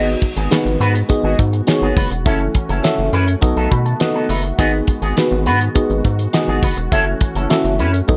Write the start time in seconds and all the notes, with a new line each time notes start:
Already playing: G#1 D#3 G#3 B3 D#4 F#4 G#4 D#5
0.07 muted clean electric guitar stroke, closed hi-hat
0.22 muted clean electric guitar stroke, kick, closed hi-hat
0.36 G#1 B3 F#4 G#4, closed hi-hat
0.51 B3 D#4 F#4 G#4 B4, muted clean electric guitar stroke, snare, closed hi-hat
0.66 G#1, muted clean electric guitar stroke, closed hi-hat
0.80 G#2 B3 F#4 B4, closed hi-hat
0.95 muted clean electric guitar stroke, closed hi-hat
1.09 B3 D#4 F#4 G#4 D#5, muted clean electric guitar stroke, kick, closed hi-hat
1.24 G#1 B3 F#4 G#4
1.39 G#2, muted clean electric guitar stroke, kick, closed hi-hat
1.53 muted clean electric guitar stroke, closed hi-hat
1.67 B3 D#4 F#4 G#4 C#5, snare, closed hi-hat
1.82 G#1 B3 F#4 G#4
1.96 F#1 B3 F#4 B4, kick, open hi-hat
2.11 E1, muted clean electric guitar stroke, closed hi-hat
2.25 F#1 E3 A3 C#4 E4 F#4 A4 E5, kick, closed hi-hat
2.41 muted clean electric guitar stroke
2.55 muted clean electric guitar stroke, kick, closed hi-hat
2.69 F#1 C#4 E4 A4, closed hi-hat
2.83 C#4 E4 F#4 A4 E5, muted clean electric guitar stroke, snare, closed hi-hat
2.98 F#1, muted clean electric guitar stroke
3.13 F#2 C#4 E4 B4, closed hi-hat
3.28 muted clean electric guitar stroke, closed hi-hat
3.41 B1 D#3 B3 D#4 F#4 A4 D#5, muted clean electric guitar stroke, kick, closed hi-hat
3.57 B1 B3 D#4 A4, closed hi-hat
3.71 B2 B5, muted clean electric guitar stroke, kick, closed hi-hat
3.86 A5, muted clean electric guitar stroke, closed hi-hat
4.00 B3 D#4 F#4 A4 D#5 F#5, snare, closed hi-hat
4.15 B3 D#4 A4
4.29 F#1 B3 D#4 B4 E5, open hi-hat
4.44 muted clean electric guitar stroke, closed hi-hat
4.58 G#1 G#3 B3 D#4 F#4 G#4 D#5, kick, closed hi-hat
4.73 muted clean electric guitar stroke
4.87 muted clean electric guitar stroke, kick, closed hi-hat
5.02 G#1 B3 F#4 G#4, closed hi-hat
5.17 B3 D#4 F#4 G#4 B4, muted clean electric guitar stroke, snare, closed hi-hat
5.32 G#1, muted clean electric guitar stroke
5.46 G#2 B3 F#4 B4, closed hi-hat
5.61 muted clean electric guitar stroke, closed hi-hat
5.75 B3 D#4 F#4 G#4 D#5, muted clean electric guitar stroke, kick, closed hi-hat
5.90 G#1, muted clean electric guitar stroke, closed hi-hat
6.05 G#2, kick, closed hi-hat
6.19 muted clean electric guitar stroke, closed hi-hat
6.33 B3 D#4 F#4 G#4 D#5, muted clean electric guitar stroke, snare, closed hi-hat
6.48 G#1 B3 F#4 G#4
6.63 F#1 B3 F#4 B4, kick, open hi-hat
6.77 E1, muted clean electric guitar stroke, closed hi-hat
6.92 F#1 E3 A3 C#4 E4 F#4 A4 E5, kick, closed hi-hat
7.06 muted clean electric guitar stroke
7.21 muted clean electric guitar stroke, kick, closed hi-hat
7.35 F#1 C#4 E4 A4, closed hi-hat
7.50 C#4 E4 F#4 A4 E5, muted clean electric guitar stroke, snare, closed hi-hat
7.64 F#1, muted clean electric guitar stroke, closed hi-hat
7.79 F#2 C#4 E4 B4, closed hi-hat
7.93 muted clean electric guitar stroke, closed hi-hat
8.08 B1 D#3 B3 D#4 F#4 A4 D#5, muted clean electric guitar stroke, kick, high tom